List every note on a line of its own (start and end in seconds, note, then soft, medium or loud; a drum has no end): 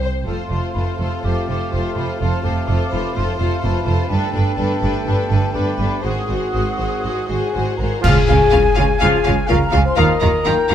0.00 0.21 C2 soft
0.00 0.27 C5 soft
0.00 0.10 C5 soft
0.00 0.12 C5 soft
0.25 0.35 F1 soft
0.25 0.34 F2 soft
0.25 4.06 C3 soft
0.25 4.06 A3 soft
0.25 4.08 C4 soft
0.25 0.50 F4 soft
0.25 0.48 A4 soft
0.25 0.37 A4 soft
0.25 4.07 A4 soft
0.25 0.51 C5 soft
0.25 4.07 F5 soft
0.25 1.20 C6 soft
0.50 0.59 F1 soft
0.50 0.58 F2 soft
0.50 0.74 F4 soft
0.50 0.73 A4 soft
0.50 0.61 C5 soft
0.50 0.75 C5 soft
0.74 0.84 F1 soft
0.74 0.83 F2 soft
0.74 0.98 F4 soft
0.74 0.95 A4 soft
0.74 0.85 B4 soft
0.74 0.99 C5 soft
0.96 1.08 F1 soft
0.96 1.08 F2 soft
0.96 1.23 F4 soft
0.96 1.22 A4 soft
0.96 1.26 A4 soft
1.00 1.22 C5 soft
1.23 1.32 F1 soft
1.23 1.32 F2 soft
1.23 1.47 F4 soft
1.23 2.20 G4 soft
1.23 1.46 A4 soft
1.23 1.47 C5 soft
1.23 1.72 D6 soft
1.47 1.57 F1 soft
1.47 1.56 F2 soft
1.47 1.72 F4 soft
1.47 1.72 A4 soft
1.47 1.71 C5 soft
1.72 1.82 F1 soft
1.72 1.80 F2 soft
1.72 1.96 F4 soft
1.72 1.93 A4 soft
1.72 1.96 C5 soft
1.72 1.97 C6 soft
1.94 2.06 F1 soft
1.94 2.04 F2 soft
1.94 2.19 F4 soft
1.94 2.19 A4 soft
1.94 2.20 C5 soft
1.94 2.20 B5 soft
2.20 2.30 F1 soft
2.20 2.29 F2 soft
2.20 2.42 F4 soft
2.20 2.45 F4 soft
2.20 2.43 A4 soft
2.20 2.43 C5 soft
2.20 2.68 A5 soft
2.44 2.54 F1 soft
2.44 2.52 F2 soft
2.44 2.66 F4 soft
2.44 2.70 G4 soft
2.44 2.66 A4 soft
2.44 2.67 C5 soft
2.67 2.77 F1 soft
2.67 2.76 F2 soft
2.67 2.90 F4 soft
2.67 2.90 A4 soft
2.67 2.93 A4 soft
2.67 2.89 C5 soft
2.67 3.16 D6 soft
2.91 3.01 F1 soft
2.91 3.01 F2 soft
2.91 3.15 F4 soft
2.91 3.15 A4 soft
2.91 3.18 B4 soft
2.91 3.13 C5 soft
3.13 3.23 F2 soft
3.13 3.38 F4 soft
3.13 3.38 A4 soft
3.13 3.36 C5 soft
3.13 3.64 C5 soft
3.13 3.62 C6 soft
3.18 3.26 F1 soft
3.37 3.47 F2 soft
3.37 3.61 F4 soft
3.37 3.61 A4 soft
3.37 3.60 C5 soft
3.42 3.50 F1 soft
3.61 3.73 F1 soft
3.61 3.71 F2 soft
3.61 3.86 F4 soft
3.61 3.85 A4 soft
3.61 4.15 B4 soft
3.61 3.84 C5 soft
3.61 4.73 A5 medium
3.85 3.95 F1 soft
3.85 3.94 F2 soft
3.85 4.11 F4 soft
3.85 4.09 A4 soft
3.85 4.10 C5 soft
4.07 4.18 G2 soft
4.07 6.00 D3 soft
4.07 5.99 A3 medium
4.07 6.04 B3 soft
4.07 4.32 D4 soft
4.07 6.00 G4 soft
4.07 4.32 A4 soft
4.07 4.32 B4 soft
4.07 6.00 G5 soft
4.12 4.20 G1 medium
4.12 5.57 A4 soft
4.33 4.43 G1 soft
4.33 4.41 G2 soft
4.33 4.57 D4 soft
4.33 4.54 A4 soft
4.33 4.56 B4 soft
4.55 4.67 G1 soft
4.55 4.66 G2 soft
4.55 4.80 D4 soft
4.55 4.77 A4 soft
4.55 4.81 B4 soft
4.78 4.89 G2 soft
4.78 5.04 D4 soft
4.78 5.03 A4 soft
4.82 4.92 G1 soft
4.82 5.05 B4 soft
5.04 5.15 G1 soft
5.04 5.14 G2 soft
5.04 5.27 D4 soft
5.04 5.28 A4 soft
5.04 5.29 B4 soft
5.04 5.53 A5 soft
5.28 5.39 G1 soft
5.28 5.37 G2 soft
5.28 5.51 D4 soft
5.28 5.52 A4 soft
5.28 5.52 B4 soft
5.53 5.64 G1 soft
5.53 5.62 G2 soft
5.53 5.77 D4 soft
5.53 6.05 G4 soft
5.53 5.77 A4 soft
5.53 5.76 B4 soft
5.53 6.05 B5 soft
5.78 5.87 G1 soft
5.78 5.87 G2 soft
5.78 6.04 D4 soft
5.78 6.04 A4 soft
5.78 6.03 B4 soft
6.02 6.13 G#1 soft
6.02 6.11 G#2 soft
6.02 7.79 D#3 soft
6.02 7.79 G#3 soft
6.02 7.11 C4 soft
6.02 6.28 F#4 soft
6.02 7.77 F#4 soft
6.02 7.11 G#4 soft
6.02 6.29 G#4 soft
6.02 6.27 C5 soft
6.02 7.75 F#5 soft
6.02 7.30 D#6 soft
6.28 6.38 G#1 soft
6.28 6.37 G#2 soft
6.28 6.52 F#4 soft
6.28 6.54 G#4 soft
6.28 6.50 C5 soft
6.52 6.63 G#1 soft
6.52 6.62 G#2 soft
6.52 6.77 F#4 soft
6.52 6.77 G#4 soft
6.52 6.75 C5 soft
6.77 6.88 G#1 soft
6.77 6.86 G#2 soft
6.77 7.02 F#4 soft
6.77 7.04 G#4 soft
6.77 7.02 C5 soft
7.03 7.13 G#1 soft
7.03 7.12 G#2 soft
7.03 7.27 F#4 soft
7.03 7.29 G#4 soft
7.03 7.27 C5 soft
7.28 7.39 G#1 soft
7.28 7.37 G#2 soft
7.28 7.51 F#4 soft
7.28 7.75 G#4 medium
7.28 7.53 G#4 soft
7.28 7.52 C5 soft
7.28 7.76 G#5 medium
7.53 7.64 G#1 soft
7.53 7.63 G#2 soft
7.53 7.77 F#4 soft
7.53 7.79 G#4 soft
7.53 7.78 C5 soft
7.77 7.88 G#1 soft
7.77 7.89 G#2 soft
7.77 8.03 F#4 soft
7.77 8.03 A#4 medium
7.77 8.04 C5 soft
7.77 8.03 A#5 medium
7.82 8.05 G#4 soft
8.01 8.13 C#2 medium
8.01 8.19 F3 medium
8.01 8.10 F4 medium
8.01 8.20 F4 medium
8.01 9.00 G#4 loud
8.01 8.21 F5 medium
8.01 8.12 F5 medium
8.01 8.98 G#5 loud
8.01 9.49 G#5 loud
8.01 concert bass drum medium
8.01 crash medium
8.06 8.14 C#3 medium
8.06 8.15 F5 medium
8.28 8.37 C#2 medium
8.28 8.38 C#3 medium
8.28 8.36 F4 medium
8.28 8.36 F5 medium
8.50 8.62 C#2 medium
8.50 8.61 C#3 medium
8.50 8.61 F4 medium
8.50 8.58 F5 medium
8.75 8.86 C#2 medium
8.75 8.85 C#3 medium
8.75 8.85 F4 medium
8.75 8.83 F5 medium
8.75 8.84 F5 medium
8.99 9.10 C#2 medium
8.99 9.10 C#3 medium
8.99 9.19 F3 medium
8.99 9.09 F4 medium
8.99 9.19 F4 medium
8.99 9.49 G#4 loud
8.99 9.07 F5 medium
8.99 9.08 F5 medium
8.99 9.18 F5 medium
8.99 9.48 G#5 medium
9.24 9.36 C#2 medium
9.24 9.34 C#3 medium
9.24 9.34 F4 medium
9.24 9.32 F5 medium
9.47 9.57 C#3 medium
9.47 9.57 F4 medium
9.47 9.60 A#4 loud
9.47 9.55 F5 medium
9.47 9.97 F5 medium
9.47 9.57 F5 medium
9.47 9.74 A#5 loud
9.51 9.59 C#2 medium
9.70 9.81 C#3 medium
9.70 9.80 F4 medium
9.70 9.85 G#4 loud
9.70 9.78 F5 medium
9.70 9.80 F5 medium
9.75 9.83 C#2 medium
9.75 9.86 G#5 medium
9.85 9.97 C5 loud
9.85 9.98 C6 medium
9.96 10.07 D#2 loud
9.96 10.05 D#3 medium
9.96 10.15 F3 medium
9.96 10.05 F4 medium
9.96 10.15 F4 medium
9.96 10.75 A#4 loud
9.96 10.48 D#5 medium
9.96 10.04 F5 medium
9.96 10.14 F5 medium
9.96 10.04 A#5 medium
9.96 10.75 A#5 loud
10.20 10.31 D#2 medium
10.20 10.30 D#3 medium
10.20 10.29 F4 medium
10.20 10.29 F5 medium
10.20 10.28 A#5 medium
10.45 10.56 D#2 medium
10.45 10.54 D#3 medium
10.45 10.54 F4 medium
10.45 10.53 F5 medium
10.45 10.75 G5 medium
10.45 10.53 A#5 medium
10.68 10.75 D#3 medium
10.68 10.75 F4 medium
10.68 10.75 F5 medium
10.68 10.75 A#5 medium